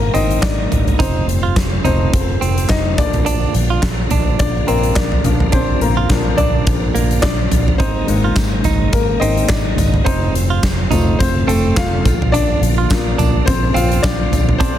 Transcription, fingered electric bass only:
0.14 G#1
0.43 G#1
0.71 G#1
1.00 F1
1.27 F1
1.57 F1
1.84 F1
2.14 F1
2.42 F1
2.69 F1
2.98 A#1
3.55 A#1
3.83 A#1
4.12 A#1
4.40 A#1
4.69 A#1
4.96 A#1
5.25 A#1
5.53 A#1
5.81 A#1
6.10 A#1
6.38 A#1
6.67 A#1
6.95 A#1
7.23 A#1
7.51 A#1
7.80 G#1
8.08 G#1
8.36 G#1
8.64 G#1
8.93 G#1
9.21 G#1
9.50 G#1
9.77 G#1
10.07 F1
10.34 F1
10.90 F1
11.20 F1
11.47 F1
11.77 F1
12.06 A#1
12.61 A#1
12.91 A#1
13.18 A#1
13.47 A#1
13.75 A#1
14.04 A#1
14.32 A#1
14.61 A#1

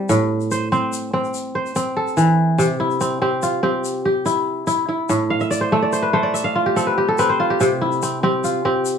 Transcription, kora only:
Already playing: G3 C4 E4
0.09 A2
0.51 C5
0.72 C4 C5
1.13 C4
1.55 C5
1.76 C4
1.97 A4
2.17 E3
2.58 C3
2.80 E4
3.01 C4
3.22 C4 G4
3.43 F4
3.63 C4 G4
4.05 G4
4.26 E4
4.67 E4
4.89 E4
5.09 A2
5.30 F5
5.41 E5
5.51 D5
5.61 C5
5.72 A3 E5
5.82 D5
5.93 C5
6.02 B4
6.13 A3 C5
6.23 D5
6.34 E5
6.44 F5
6.56 F4
6.66 G4
6.76 C4 A4
6.87 B4
6.98 G4
7.08 A4
7.19 C4 B4
7.30 C5
7.40 F4
7.50 G4
7.61 C3
7.81 E4
8.03 C4
8.23 C4 G4
8.44 F4
8.65 C4 G4

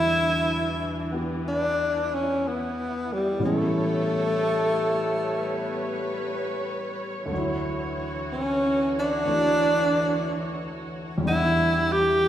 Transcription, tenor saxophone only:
Already playing: E4
1.48 D4
2.14 C#4
2.48 B3
3.13 G3
3.45 A3
8.32 C#4
8.99 D4
11.27 E4
11.93 G4

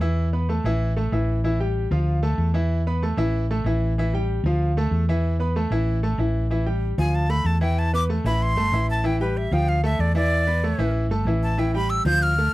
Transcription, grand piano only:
0.01 E3 E4 E5
0.33 B3 B4 B5
0.49 A3 A4 A5
0.65 E3 E4 E5
0.96 A3 A4 A5
1.12 E3 E4 E5
1.44 E3 E4 E5
1.60 G3 G4 G5
1.91 F3 F4 F5
2.23 A3 A4 A5
2.54 E3 E4 E5
2.87 B3 B4 B5
3.02 A3 A4 A5
3.17 E3 E4 E5
3.51 A3 A4 A5
3.66 E3 E4 E5
3.98 E3 E4 E5
4.14 G3 G4 G5
4.46 F3 F4 F5
4.77 A3 A4 A5
5.09 E3 E4 E5
5.39 B3 B4 B5
5.56 A3 A4 A5
5.71 E3 E4 E5
6.03 A3 A4 A5
6.19 E3 E4 E5
6.51 E3 E4 E5
6.66 G3 G4 G5
6.98 F3 F4 F5
7.29 A3 A4 A5
7.61 E3 E4 E5
7.93 B3 B4 B5
8.09 A3 A4 A5
8.25 E3 E4 E5
8.57 A3 A4 A5
8.73 E3 E4 E5
9.04 E3 E4 E5
9.21 G3 G4 G5
9.52 F3 F4 F5
9.84 A3 A4 A5
10.15 E3 E4 E5
10.47 B3 B4 B5
10.63 A3 A4 A5
10.79 E3 E4 E5
11.11 A3 A4 A5
11.27 E3 E4 E5
11.58 E3 E4 E5
11.74 G3 G4 G5
12.06 F3 F4 F5
12.38 A3 A4 A5

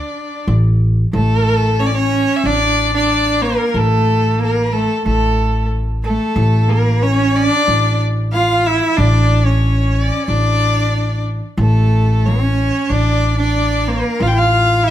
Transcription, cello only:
Already playing: D4
1.13 A3
1.80 C#4
1.94 C#4
2.46 D4
2.94 D4
3.42 A#3
3.68 A#3
3.74 A3
4.40 A#3
4.74 A3
5.04 A3
6.04 A3
6.69 A#3
7.02 C#4
7.36 C#4
7.47 D4
8.33 F4
8.67 E4
8.97 D4
9.47 C#4
10.29 D4
11.59 A3
12.26 C#4
12.90 D4
13.38 D4
13.88 A#3
14.22 F4
14.34 F4
14.84 E4

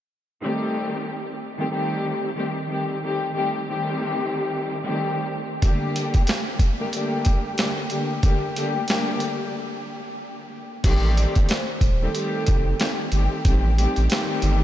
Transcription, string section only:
0.41 D#3 G3 A3 C4 G4
1.58 D#3 G3 A3 C4 G4
1.69 D#3 G3 A3 C4 G4
2.35 D#3 G3 A3 C4 G4
2.68 D#3 G3 A3 C4 G4
3.02 D#3 G3 A3 C4 G4
3.33 D#3 G3 A3 C4 G4
3.68 D#3 G3 A3 C4 G4
4.83 D#3 G3 A3 C4 G4
5.63 D3 G3 A3 A#3 G4
6.79 D3 G3 A3 A#3 G4
6.93 D3 G3 A3 A#3 G4
7.59 D3 G3 A3 A#3 G4
7.89 D3 G3 A3 A#3 G4
8.22 D3 G3 A3 A#3 G4
8.55 D3 G3 A3 A#3 G4
8.88 D3 G3 A3 A#3 G4
10.85 D#3 G3 A3 C4 G4
12.02 D#3 G3 A3 C4 G4
12.13 D#3 G3 A3 C4 G4
12.79 D#3 G3 A3 C4 G4
13.11 D#3 G3 A3 C4 G4
13.46 D#3 G3 A3 C4 G4
13.77 D#3 G3 A3 C4 G4
14.12 D#3 G3 A3 C4 G4

